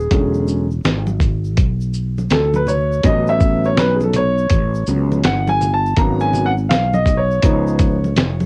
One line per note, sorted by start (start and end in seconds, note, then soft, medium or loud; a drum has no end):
0.00 0.43 G#4 medium
0.00 shaker soft
0.10 0.81 E1 loud
0.10 0.64 D3 medium
0.10 0.64 F#3 soft
0.10 0.64 G#3 soft
0.10 0.64 C#4 medium
0.10 kick medium
0.10 closed hi-hat medium
0.10 shaker medium
0.34 shaker medium
0.47 shaker soft
0.47 shaker medium
0.71 shaker soft
0.84 1.58 G#1 medium
0.84 snare loud
0.84 closed hi-hat medium
0.84 shaker medium
1.07 high conga medium
1.07 shaker soft
1.20 kick medium
1.20 closed hi-hat soft
1.20 low conga medium
1.20 shaker soft
1.44 shaker soft
1.57 2.27 B1 medium
1.57 kick medium
1.57 closed hi-hat medium
1.57 shaker medium
1.81 shaker soft
1.93 shaker soft
1.93 shaker medium
2.18 high conga medium
2.18 shaker soft
2.30 3.00 D2 medium
2.30 2.55 A4 medium
2.30 snare loud
2.30 closed hi-hat medium
2.30 high conga soft
2.30 shaker medium
2.54 2.68 B4 medium
2.54 high conga medium
2.54 shaker medium
2.67 3.05 C#5 medium
2.67 low conga medium
2.67 shaker soft
2.68 shaker medium
2.92 shaker soft
3.03 3.78 A1 loud
3.03 4.09 F#3 medium
3.03 4.10 B3 soft
3.03 4.10 C#4 medium
3.03 3.27 D#5 medium
3.03 kick medium
3.03 closed hi-hat medium
3.03 shaker medium
3.27 3.66 E5 loud
3.27 shaker medium
3.40 kick medium
3.40 shaker soft
3.40 shaker medium
3.64 3.78 C#5 medium
3.64 shaker soft
3.77 4.47 B1 medium
3.77 3.95 B4 medium
3.77 snare loud
3.77 closed hi-hat medium
3.77 shaker medium
3.96 4.01 G#4 medium
4.00 4.15 A4 medium
4.00 high conga medium
4.00 shaker medium
4.13 4.84 C#5 loud
4.13 closed hi-hat soft
4.13 low conga medium
4.13 shaker soft
4.38 shaker soft
4.50 4.85 A1 medium
4.50 kick loud
4.50 closed hi-hat medium
4.50 shaker medium
4.75 shaker soft
4.87 5.22 C#2 medium
4.87 5.20 F#3 soft
4.87 5.20 B3 soft
4.87 5.20 C#4 medium
4.87 shaker medium
4.87 shaker soft
5.12 high conga medium
5.12 shaker soft
5.24 5.94 G1 loud
5.24 5.47 F#5 medium
5.24 snare loud
5.24 closed hi-hat medium
5.24 high conga soft
5.24 shaker medium
5.47 5.71 G#5 loud
5.47 high conga medium
5.47 shaker medium
5.61 low conga medium
5.61 shaker soft
5.61 shaker medium
5.74 5.98 A5 medium
5.86 shaker soft
5.96 6.67 G#1 loud
5.96 6.50 F#3 medium
5.96 6.50 A#3 soft
5.96 6.50 B3 medium
5.96 6.51 C#4 medium
5.96 6.22 A#5 loud
5.96 kick loud
5.96 closed hi-hat medium
5.96 shaker medium
6.20 6.46 G#5 loud
6.20 shaker medium
6.33 low conga medium
6.33 shaker soft
6.33 shaker medium
6.46 6.51 F#5 loud
6.58 shaker soft
6.69 7.39 B1 medium
6.69 6.95 F5 medium
6.69 snare loud
6.69 closed hi-hat medium
6.69 shaker medium
6.93 7.19 D#5 medium
6.93 high conga medium
6.93 shaker soft
7.06 kick medium
7.06 closed hi-hat soft
7.06 high conga soft
7.06 low conga medium
7.06 shaker soft
7.17 8.46 C#5 medium
7.31 shaker soft
7.42 8.13 C#2 loud
7.42 7.95 F3 medium
7.42 7.96 B3 medium
7.42 7.96 D#4 medium
7.42 kick medium
7.42 closed hi-hat medium
7.42 shaker medium
7.67 shaker soft
7.79 kick medium
7.79 closed hi-hat medium
7.79 shaker medium
7.79 shaker soft
8.04 high conga medium
8.04 shaker soft
8.16 8.46 F1 medium
8.16 snare loud
8.16 closed hi-hat medium
8.16 high conga soft
8.16 shaker medium
8.40 high conga medium
8.40 shaker medium